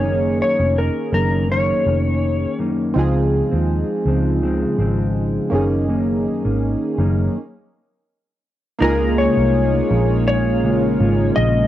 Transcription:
X:1
M:4/4
L:1/16
Q:"Swing 16ths" 1/4=82
K:Db
V:1 name="Electric slide guitar"
d2 d2 B2 B2 d6 z2 | z16 | z16 | B2 d6 d6 e2 |]
V:2 name="Synth keys"
[B,DEA]12- [B,DEA]2 z2 | [CEFA]12- [CEFA]2 [B,DEA]2- | [B,DEA]8 z8 | [B,EFA]16 |]
V:3 name="Ambient pad"
z16 | z16 | z16 | [A,B,DF]16 |]
V:4 name="Clean electric guitar" clef=bass
[G,,E,B,D]3 [E,B,D]3 [G,,E,B,D]2 [G,,E,B,D]2 [E,B,D]4 [G,,E,B,D]2 | [D,F,A,C]3 [F,A,C]3 [D,F,A,C]2 [D,F,A,C]2 [D,F,A,C]4 [G,,E,B,D]2 | [G,,E,B,D]3 [E,B,D]3 [G,,E,B,D]2 z8 | [D,A,B,F]3 [A,B,F]2 [A,B,F]4- [A,B,F] [D,A,B,F]2 [D,A,B,F]2 [D,A,B,F]2 |]
V:5 name="Fingered electric bass" clef=bass
G,,,3 F,,,2 z G,,,4 F,,,4 z2 | D,,3 E,,2 z D,,4 A,,,4 G,,,2- | G,,,3 A,,,2 z G,,,2 z8 | D,,3 C,,3 B,,,6 A,,,2 B,,,2 |]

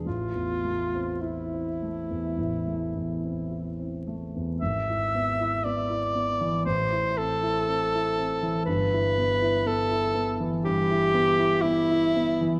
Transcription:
X:1
M:4/4
L:1/16
Q:1/4=59
K:Am
V:1 name="Alto saxophone"
F4 E8- E2 z2 | e4 d4 c2 A6 | B4 A3 z G4 E4 |]
V:2 name="Grand piano"
A,,, E,, A, C E C A, E,, A,,, A, E,, C E C A, E,, | ^G,,, E B, E B, E B, E, A,,, E C E C E C E, | [G,,,G,,] E B, E B, E B, E, G,, E B, E B, E B, E, |]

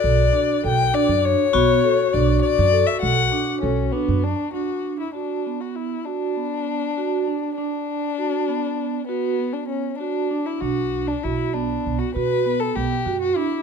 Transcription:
X:1
M:5/8
L:1/16
Q:1/4=99
K:Bm
V:1 name="Glockenspiel"
f'2 z8 | c'8 z2 | z8 z2 | z8 z2 |
z8 z2 | z8 z2 | z8 z2 | z8 z2 |
z8 z2 |]
V:2 name="Vibraphone"
F8- F2 | F8- F2- | F8 z2 | z8 z2 |
z8 z2 | z8 z2 | z8 z2 | z8 z2 |
z8 z2 |]
V:3 name="Violin"
d4 g2 d2 c2- | c4 d2 d3 e | f4 C2 B,2 D2 | F3 E D3 F E2 |
D8- D2 | D8- D2 | B,3 D C2 D3 E | F3 D E2 D3 F |
B3 A G3 F E2 |]
V:4 name="Vibraphone"
A2 D2 A2 D4 | B,2 A2 D4 A2- | A2 D2 A2 D4 | D4 F2 B,4 |
F2 B,4 F2 D2 | D4 F2 B,4 | F2 B,4 F2 D2 | D4 F2 B,4 |
F2 B,4 F2 D2 |]
V:5 name="Upright bass" clef=bass
B,,,2 z2 B,,,2 z F,,2 z | B,,,2 z2 B,,,2 z F,,2 z | B,,,2 z2 B,,,2 z F,,2 z | z8 z2 |
z8 z2 | z8 z2 | z8 z2 | B,,,4 B,,,4 B,,, z |
B,,4 B,,,2 F,,2 z2 |]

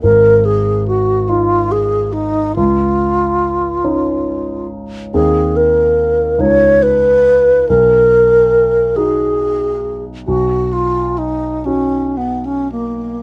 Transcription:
X:1
M:6/8
L:1/16
Q:3/8=47
K:Cblyd
V:1 name="Alto flute"
B2 A2 G2 F2 A2 E2 | F8- F2 z2 | A2 B4 d2 c4 | B6 A6 |
^F2 =F2 ^D2 _D2 =B, D _B,2 |]
V:2 name="Grand piano"
A,,,6 [EF]6 | D,,6 [DE]6 | [E,,=CE]6 [D,,E]6 | =B,,,6 [^D^F]6 |
=B,,,6 [^D^F]6 |]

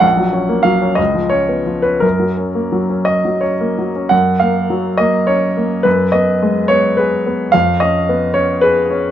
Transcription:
X:1
M:6/8
L:1/16
Q:3/8=69
K:F#
V:1 name="Grand piano"
f4 e2 d2 c3 B | A6 d2 c4 | f2 e4 d2 c4 | B2 d4 c2 B4 |
e2 d4 c2 B4 |]
V:2 name="Grand piano"
A,,, F, C A, F, C C,, E, C B, E, C | F,, F, C A, F, C2 F, C A, F, C | F,,2 A,2 F,2 A,2 C2 A,2 | F,,2 B,2 G,2 B,2 G2 B,2 |
E,,2 C2 B,2 C2 G2 C2 |]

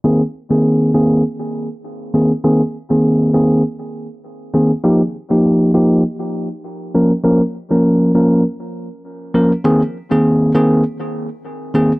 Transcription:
X:1
M:4/4
L:1/16
Q:"Swing 16ths" 1/4=100
K:Ab
V:1 name="Tine electric piano"
[E,B,CA] z2 [E,B,CA]3 [E,B,CA]2 z6 [E,B,CA] z | [E,B,CA] z2 [E,B,CA]3 [E,B,CA]2 z6 [E,B,CA] z | [F,B,EG] z2 [F,B,EG]3 [F,B,EG]2 z6 [F,B,DB] z | [F,B,DB] z2 [F,B,DB]3 [F,B,DB]2 z6 [F,B,DB] z |
[E,B,CA] z2 [E,B,CA]3 [E,B,CA]2 z6 [E,B,CA] z |]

